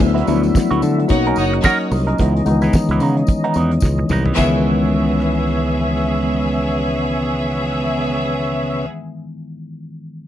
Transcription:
0.00 D2 F#3 A3 B3 D4 E4 F#4 E5, kick, crash, tambourine
0.14 F#3 B3 E4, snare, closed hi-hat
0.26 D2 F3 F#3 A3 B3 E4, closed hi-hat, tambourine
0.33 F#3
0.43 closed hi-hat, tambourine
0.55 muted clean electric guitar stroke, kick, snare, tambourine
0.71 D2 F#3 B3 F#4, closed hi-hat
0.82 D3, closed hi-hat, tambourine
0.99 muted clean electric guitar stroke, closed hi-hat
1.08 B1 F#3 A#3 C#4 D#4 A#4 C#5 D#5 F#5, muted clean electric guitar stroke, kick, closed hi-hat, tambourine
1.26 C#4 D#4 A#4, closed hi-hat
1.36 F#1 D#4 C#5 F#5, closed hi-hat, tambourine
1.53 muted clean electric guitar stroke, closed hi-hat
1.63 C#4 D#4 A#4 C#5 F#5, kick, snare, tambourine
1.80 muted clean electric guitar stroke, closed hi-hat
1.91 C2, muted clean electric guitar stroke, open hi-hat, tambourine
2.07 C#4 D#4 A#4, closed hi-hat
2.18 C#2 E3 G#3 B3 D#4, kick, closed hi-hat, tambourine
2.35 muted clean electric guitar stroke, closed hi-hat
2.45 C#2 D#3 G#3 B3 D#4, muted clean electric guitar stroke, closed hi-hat, tambourine
2.51 E3
2.62 E3 B3 E4, closed hi-hat, tambourine
2.73 kick, snare, tambourine
2.89 C#2 E3 B3 E4, closed hi-hat
3.00 C#3 E3 B3 D#4, closed hi-hat, tambourine
3.17 muted clean electric guitar stroke, closed hi-hat
3.27 muted clean electric guitar stroke, kick, closed hi-hat, tambourine
3.44 E3 B3 D#4, closed hi-hat
3.54 E2 E3 B3 D#4, closed hi-hat, tambourine
3.71 muted clean electric guitar stroke, closed hi-hat
3.80 C#2, kick, snare, tambourine
3.85 muted clean electric guitar stroke
3.98 muted clean electric guitar stroke, high tom
4.09 C2 E3 B3 D#4, mid tom, tambourine
4.26 E3 B3 E4, floor tom
4.35 C#2 C#3 E3 G#3 B3 G#4 C#5 E5, kick, crash, tambourine
4.39 D#3 B3
5.20 cross-stick

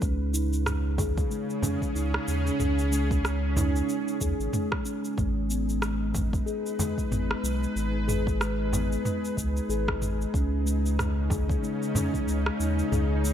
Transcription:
Already playing: B4
0.02 C#2 C#3 C#4, kick, cabasa
0.34 D#4, cabasa
0.53 C#4, cabasa
0.66 G#4, cross-stick, mid tom, cabasa
0.98 G#4, kick, frame drum, cabasa
1.17 kick, cabasa
1.30 G#3, cabasa
1.50 cabasa
1.62 C#4, mid tom, frame drum, cabasa
1.82 kick, cabasa
1.95 C#2 D#4, cabasa
2.14 cross-stick
2.28 D#2, cabasa
2.47 cabasa
2.59 C#2 G#4, mid tom, cabasa
2.79 cabasa
2.92 G#3, cabasa
3.11 kick, cabasa
3.24 C#4, cross-stick, cabasa
3.56 D#4, mid tom, frame drum, cabasa
3.76 cabasa
3.89 cabasa
4.08 cabasa
4.21 D#2 G#4, kick, cabasa
4.39 G#1, cabasa
4.53 G#3, mid tom, cabasa
4.72 kick, cross-stick
4.85 C#4, cabasa
5.05 cabasa
5.17 G#1 G#3 D#4, kick, mid tom, cabasa
5.50 B3, cabasa
5.59 G#4
5.69 B4, cabasa
5.82 G#3, cross-stick, cabasa
6.14 kick, mid tom, frame drum, cabasa
6.33 kick, cabasa
6.46 G#4, cabasa
6.66 cabasa
6.79 G#3, frame drum, cabasa
6.98 kick, cabasa
7.11 G#1 B3, mid tom, cabasa
7.31 cross-stick
7.43 B1 G#3, cabasa
7.63 cabasa
7.75 G#1, cabasa
8.08 G#4, mid tom, cabasa
8.27 kick, cabasa
8.40 G#3, cross-stick, cabasa
8.73 B3, frame drum, cabasa
8.92 cabasa
9.05 G#3, mid tom, cabasa
9.25 cabasa
9.37 C#2, kick, cabasa
9.57 cabasa
9.69 G#1 G#4, cabasa
9.88 kick, cross-stick
10.02 G#3, mid tom, cabasa
10.21 cabasa
10.34 C#2 C#3 C#4, kick, cabasa
10.58 C#4
10.66 G#3, cabasa
10.86 cabasa
10.99 cross-stick, mid tom, cabasa
11.30 G#4, kick, frame drum, cabasa
11.49 kick, cabasa
11.63 G#3, cabasa
11.83 cabasa
11.95 C#4, mid tom, frame drum, cabasa
12.14 kick, cabasa
12.22 G#4
12.27 C#2 G#3, cabasa
12.46 cross-stick
12.60 D#2, cabasa
12.79 cabasa
12.92 C#2 G#4, mid tom, cabasa
13.24 G#3, cabasa

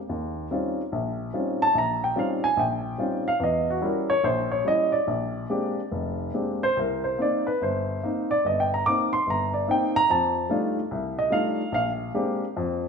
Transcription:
0.09 D#2
0.51 G3 C4 C#4 D#4 F4
0.92 A#1
1.34 G3 C4 C#4 D#4 F4
1.62 A5
1.75 A#1 A#5
2.04 G5
2.16 G3 C4 C#4 D#4 F4 F5
2.44 G#5
2.57 A#1 G5
2.98 G3 C4 C#4 D#4 F4
3.28 F5
3.40 E2 D#5
3.70 F#4
3.82 G3 C#4 E4 A#4
4.10 C#5
4.24 A#1 C5
4.52 C#5
4.65 G3 C#4 E4 D#5
4.92 D5
5.07 A#1
5.50 G#3 A#3 C4 D4 G4
5.91 F1
6.34 G#3 A#3 C4 D4 G4
6.63 C5
6.77 C2 A#4
7.04 C5
7.18 A#3 C4 D#4 D5
7.47 B4
7.62 G1 C5
8.03 A#3 C4 D#4
8.31 D5
8.45 G1 D#5
8.60 G5
8.74 A#5
8.86 A#3 C4 D#4 D6
9.13 C6
9.27 G1 A#5
9.54 D5
9.68 A#3 C4 D#4 G5
9.96 A#5
10.10 F2 A5
10.49 G3 A3 D4 D#4 F4
10.91 C2
11.19 D#5
11.31 G3 A3 D4 D#4 F4 F5
11.72 A#1 F5
12.14 G#3 A#3 C4 D4 G4
12.57 F2

